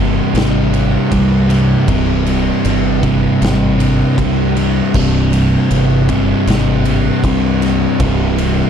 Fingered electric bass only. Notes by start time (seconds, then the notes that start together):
Already playing: G1
0.34 G#1
1.12 C2
1.88 C1
2.65 G1
3.42 G#1
4.18 C2
4.94 C1
5.71 G1
6.47 G#1
7.24 C2
8.00 C1